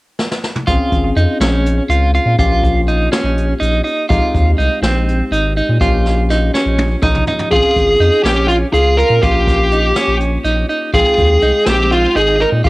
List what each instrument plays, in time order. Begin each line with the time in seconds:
0.19 snare
0.31 snare
0.44 snare
0.55 mid tom
0.67 analog synth bass A#1, tine electric piano C4 C#4 F4 G#4, clean electric guitar F4, kick, closed hi-hat
0.92 analog synth bass G#1, kick, closed hi-hat
1.16 analog synth bass F2, clean electric guitar D#4, closed hi-hat
1.40 analog synth bass A#1, clean electric guitar C#4, snare, closed hi-hat
1.66 closed hi-hat
1.89 analog synth bass C#2, clean electric guitar F4, closed hi-hat
2.14 clean electric guitar F4, closed hi-hat
2.26 analog synth bass A#2
2.38 analog synth bass A#1, tine electric piano A#3 C#4 F4 G4, clean electric guitar F4, kick, closed hi-hat
2.63 kick, closed hi-hat
2.88 clean electric guitar D#4, closed hi-hat
3.12 clean electric guitar C#4, snare, closed hi-hat
3.24 analog synth bass A#1
3.38 closed hi-hat
3.60 analog synth bass A#1, clean electric guitar D#4, closed hi-hat
3.84 clean electric guitar D#4, closed hi-hat
4.09 analog synth bass A#1, tine electric piano G#3 C4 D#4 G4, clean electric guitar F4, kick, closed hi-hat
4.34 analog synth bass D#2, kick, closed hi-hat
4.58 analog synth bass C2, clean electric guitar D#4, closed hi-hat
4.82 analog synth bass A#1, clean electric guitar C4, snare, closed hi-hat
5.08 closed hi-hat
5.31 analog synth bass G#1, clean electric guitar D#4, closed hi-hat
5.57 clean electric guitar D#4, closed hi-hat
5.69 analog synth bass A#2
5.81 analog synth bass A#1, tine electric piano A#3 C#4 F4 G4, clean electric guitar F4, kick, closed hi-hat
6.06 snare, closed hi-hat
6.30 clean electric guitar D#4, snare, closed hi-hat
6.54 clean electric guitar C#4, snare
6.66 analog synth bass A#1
6.78 high tom
7.02 analog synth bass A#1, clean electric guitar D#4, tine electric piano A#5, kick, mid tom
7.15 mid tom
7.27 clean electric guitar D#4, floor tom
7.39 floor tom
7.50 analog synth bass A#1, tine electric piano C4 C#4 F4 G#4, clean electric guitar F4, lead electric guitar G#4, kick, closed hi-hat
7.76 analog synth bass G#1, kick, closed hi-hat
8.00 analog synth bass F2, clean electric guitar D#4, closed hi-hat
8.24 analog synth bass A#1, clean electric guitar C#4, lead electric guitar G4, snare, closed hi-hat
8.48 lead electric guitar F4, closed hi-hat
8.73 analog synth bass C#2, clean electric guitar F4, lead electric guitar G#4, closed hi-hat
8.97 clean electric guitar F4, lead electric guitar A#4, closed hi-hat
9.10 analog synth bass A#2
9.22 analog synth bass A#1, tine electric piano A#3 C#4 F4 G4, clean electric guitar F4, lead electric guitar G4, kick, closed hi-hat
9.47 kick, snare, closed hi-hat
9.72 clean electric guitar D#4, closed hi-hat
9.96 clean electric guitar C#4, snare, closed hi-hat
10.08 analog synth bass A#1
10.20 closed hi-hat
10.44 analog synth bass A#1, clean electric guitar D#4, closed hi-hat
10.69 clean electric guitar D#4, closed hi-hat
10.93 analog synth bass A#1, tine electric piano G#3 C4 D#4 G5, clean electric guitar F4, lead electric guitar G#4, kick, closed hi-hat
11.17 analog synth bass D#2, kick, closed hi-hat
11.42 analog synth bass C2, clean electric guitar D#4, closed hi-hat
11.66 analog synth bass A#1, clean electric guitar C4, lead electric guitar G4, snare, closed hi-hat
11.92 lead electric guitar F4, closed hi-hat
12.16 analog synth bass G#1, clean electric guitar D#4, lead electric guitar G#4, closed hi-hat
12.40 clean electric guitar D#4, lead electric guitar A#4, closed hi-hat
12.52 analog synth bass A#2
12.64 analog synth bass A#1, tine electric piano A#3 C#4 F4 G4, clean electric guitar F4, kick, closed hi-hat